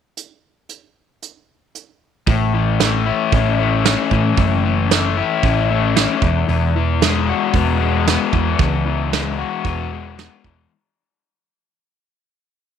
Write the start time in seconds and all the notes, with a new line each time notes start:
0.17 closed hi-hat
0.69 closed hi-hat
1.22 closed hi-hat
1.75 closed hi-hat
2.27 A1 A2, kick, open hi-hat
2.54 E3
2.79 A3, snare, open hi-hat
3.06 E4
3.32 A1 C#4, kick, open hi-hat
3.60 A3
3.85 C#4, snare, open hi-hat
4.11 A2 E3, kick
4.37 F#1 A2, kick, open hi-hat
4.65 E3
4.91 A3, snare, open hi-hat
5.17 E4
5.43 A1 C#4, kick, open hi-hat
5.70 A3
5.96 C#4, snare
6.22 E1 E2, kick
6.48 E1 E2, open hi-hat
6.75 E3
7.01 G#3, snare, open hi-hat
7.29 F#4
7.53 E1 B3, kick, open hi-hat
7.81 G#3
8.07 B3, snare, open hi-hat
8.33 E2 E3, kick
8.59 C#2 E2, kick, open hi-hat
8.86 E3
9.12 G#3, snare, open hi-hat
9.39 F#4
9.65 E1 B3, kick, open hi-hat
9.92 G#3
10.18 B3, snare, open hi-hat
10.44 E1 E3, kick